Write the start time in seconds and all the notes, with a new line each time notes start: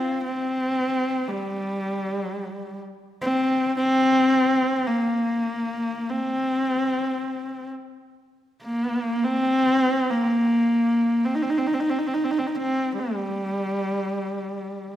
Already playing: C4
0.25 C4
1.28 G3
3.22 C4
3.77 C4
4.87 A#3
6.10 C4
8.63 A#3
9.24 C4
10.10 A#3
11.25 C4
11.35 D#4
11.42 C4
11.50 D#4
11.58 C4
11.67 D#4
11.74 C4
11.80 D#4
11.90 C4
11.99 D#4
12.07 C4
12.14 D#4
12.24 C4
12.31 D#4
12.39 C4
12.47 D#4
12.55 C4
12.99 G3